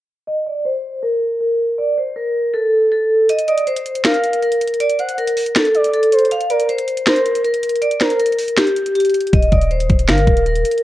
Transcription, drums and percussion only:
3.29 closed hi-hat medium
3.39 closed hi-hat medium
3.48 closed hi-hat medium
3.58 closed hi-hat medium
3.67 closed hi-hat soft
3.77 closed hi-hat medium
3.86 closed hi-hat medium
3.95 closed hi-hat medium
4.05 finger snap medium
4.05 snare loud
4.05 closed hi-hat medium
4.14 closed hi-hat medium
4.24 closed hi-hat medium
4.33 closed hi-hat medium
4.43 closed hi-hat soft
4.52 closed hi-hat medium
4.61 closed hi-hat medium
4.68 closed hi-hat medium
4.74 closed hi-hat soft
4.80 closed hi-hat medium
4.90 closed hi-hat medium
4.99 closed hi-hat medium
5.09 closed hi-hat medium
5.18 closed hi-hat soft
5.27 closed hi-hat medium
5.37 open hi-hat medium
5.46 closed hi-hat medium
5.56 finger snap medium
5.56 snare loud
5.56 closed hi-hat medium
5.65 closed hi-hat medium
5.75 closed hi-hat medium
5.84 closed hi-hat medium
5.93 closed hi-hat soft
6.03 closed hi-hat medium
6.12 closed hi-hat medium
6.18 closed hi-hat medium
6.25 closed hi-hat soft
6.31 closed hi-hat medium
6.41 closed hi-hat medium
6.50 closed hi-hat medium
6.60 closed hi-hat medium
6.69 closed hi-hat soft
6.78 closed hi-hat medium
6.88 closed hi-hat medium
6.97 closed hi-hat medium
7.07 finger snap medium
7.07 snare loud
7.07 closed hi-hat medium
7.16 closed hi-hat medium
7.26 closed hi-hat medium
7.35 closed hi-hat medium
7.44 closed hi-hat soft
7.54 closed hi-hat medium
7.63 closed hi-hat medium
7.69 closed hi-hat medium
7.76 closed hi-hat soft
7.82 closed hi-hat medium
7.91 closed hi-hat medium
8.01 finger snap medium
8.01 snare medium
8.01 closed hi-hat medium
8.10 closed hi-hat medium
8.20 closed hi-hat medium
8.26 closed hi-hat medium
8.32 closed hi-hat soft
8.39 open hi-hat medium
8.48 closed hi-hat medium
8.57 finger snap medium
8.57 snare loud
8.57 closed hi-hat medium
8.67 closed hi-hat medium
8.76 closed hi-hat medium
8.86 closed hi-hat medium
8.95 closed hi-hat medium
9.00 closed hi-hat medium
9.05 closed hi-hat medium
9.09 closed hi-hat soft
9.14 closed hi-hat medium
9.20 closed hi-hat medium
9.27 closed hi-hat soft
9.33 kick loud
9.33 closed hi-hat medium
9.42 closed hi-hat medium
9.52 kick medium
9.52 closed hi-hat medium
9.61 closed hi-hat medium
9.71 closed hi-hat soft
9.80 closed hi-hat medium
9.90 kick medium
9.90 closed hi-hat medium
9.99 closed hi-hat medium
10.09 finger snap medium
10.09 snare loud
10.09 closed hi-hat medium
10.18 closed hi-hat medium
10.27 kick medium
10.27 closed hi-hat medium
10.37 closed hi-hat medium
10.46 closed hi-hat soft
10.56 closed hi-hat medium
10.65 closed hi-hat medium
10.71 closed hi-hat medium
10.78 closed hi-hat soft

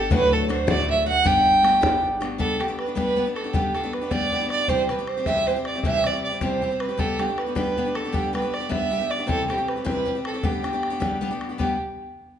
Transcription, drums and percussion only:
0.11 bodhran loud
0.32 bodhran soft
0.50 bodhran medium
0.68 bodhran loud
0.89 bodhran soft
1.25 bodhran medium
1.46 bodhran soft
1.65 bodhran medium
1.83 bodhran loud
2.04 bodhran soft
2.22 bodhran medium
2.40 bodhran medium
2.61 bodhran medium
2.79 bodhran medium
2.97 bodhran medium
3.08 bodhran soft
3.18 bodhran soft
3.36 bodhran medium
3.54 bodhran medium
3.75 bodhran medium
3.93 bodhran medium
4.11 bodhran medium
4.22 bodhran soft
4.32 bodhran soft
4.50 bodhran medium
4.68 bodhran medium
4.89 bodhran medium
5.07 bodhran medium
5.26 bodhran medium
5.37 bodhran soft
5.47 bodhran soft
5.65 bodhran medium
5.83 bodhran medium
6.04 bodhran medium
6.41 bodhran medium
6.62 bodhran soft
6.80 bodhran medium
6.99 bodhran medium
7.20 bodhran medium
7.38 bodhran medium
7.56 bodhran medium
7.67 bodhran soft
7.77 bodhran soft
7.95 bodhran medium
8.14 bodhran medium
8.35 bodhran medium
8.54 bodhran medium
8.72 bodhran medium
8.82 bodhran soft
8.93 bodhran soft
9.11 bodhran medium
9.29 bodhran medium
9.50 bodhran medium
9.68 bodhran medium
9.86 bodhran medium
9.97 bodhran soft
10.07 bodhran soft
10.25 bodhran medium
10.43 bodhran medium
10.64 bodhran medium
10.83 bodhran medium
11.02 bodhran medium
11.12 bodhran soft
11.23 bodhran soft
11.41 bodhran medium
11.60 bodhran medium

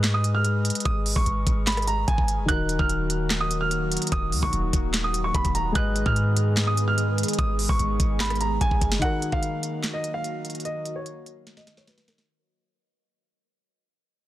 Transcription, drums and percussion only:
0.04 snare loud
0.04 clap medium
0.04 closed hi-hat medium
0.24 closed hi-hat medium
0.45 closed hi-hat medium
0.65 closed hi-hat medium
0.70 closed hi-hat medium
0.75 closed hi-hat medium
0.80 closed hi-hat medium
0.85 kick loud
0.85 closed hi-hat medium
1.06 open hi-hat medium
1.16 kick medium
1.26 closed hi-hat medium
1.47 kick loud
1.47 closed hi-hat medium
1.67 snare loud
1.67 clap medium
1.67 closed hi-hat medium
1.72 closed hi-hat medium
1.77 cross-stick loud
1.77 closed hi-hat soft
1.82 closed hi-hat soft
1.87 closed hi-hat medium
2.08 kick loud
2.08 closed hi-hat medium
2.18 kick loud
2.28 closed hi-hat medium
2.49 kick loud
2.49 closed hi-hat medium
2.69 closed hi-hat medium
2.79 kick loud
2.89 closed hi-hat medium
3.10 closed hi-hat loud
3.30 snare loud
3.30 clap medium
3.30 closed hi-hat medium
3.51 closed hi-hat medium
3.71 closed hi-hat medium
3.92 closed hi-hat medium
3.97 closed hi-hat medium
4.02 closed hi-hat medium
4.07 closed hi-hat medium
4.12 kick loud
4.12 closed hi-hat medium
4.32 open hi-hat medium
4.43 kick medium
4.53 closed hi-hat medium
4.73 kick loud
4.73 closed hi-hat loud
4.94 snare loud
4.94 clap medium
4.94 closed hi-hat medium
5.14 closed hi-hat loud
5.34 kick loud
5.34 closed hi-hat medium
5.45 kick loud
5.45 closed hi-hat medium
5.55 closed hi-hat medium
5.75 kick loud
5.75 closed hi-hat medium
5.96 closed hi-hat medium
6.06 kick medium
6.16 closed hi-hat medium
6.37 closed hi-hat loud
6.57 snare loud
6.57 clap loud
6.57 closed hi-hat medium
6.77 closed hi-hat medium
6.98 closed hi-hat medium
7.18 closed hi-hat medium
7.23 closed hi-hat medium
7.28 closed hi-hat medium
7.33 closed hi-hat medium
7.39 kick loud
7.39 closed hi-hat medium
7.59 open hi-hat medium
7.69 kick medium
7.79 closed hi-hat medium
8.00 kick loud
8.00 closed hi-hat loud
8.20 snare loud
8.20 clap medium
8.20 closed hi-hat medium
8.25 closed hi-hat medium
8.30 cross-stick medium
8.30 closed hi-hat soft
8.35 closed hi-hat soft
8.41 closed hi-hat medium
8.61 kick medium
8.61 closed hi-hat medium
8.71 kick medium
8.81 kick loud
8.81 closed hi-hat medium
8.92 snare loud
9.02 kick loud
9.02 closed hi-hat medium
9.22 closed hi-hat medium
9.32 kick medium
9.43 closed hi-hat medium
9.63 closed hi-hat medium
9.83 snare loud
9.83 clap medium
9.83 closed hi-hat medium
10.04 closed hi-hat medium
10.24 closed hi-hat medium
10.45 closed hi-hat medium
10.50 closed hi-hat medium
10.55 closed hi-hat medium
10.60 closed hi-hat medium
10.65 closed hi-hat medium
10.86 closed hi-hat medium
11.06 closed hi-hat medium
11.26 closed hi-hat medium
11.47 snare medium
11.47 closed hi-hat medium
11.57 snare medium
11.67 snare medium
11.67 closed hi-hat medium
11.77 snare medium
11.87 snare medium
11.87 closed hi-hat medium
11.98 snare medium
11.98 closed hi-hat medium
12.08 snare loud
12.08 closed hi-hat medium
12.18 snare medium

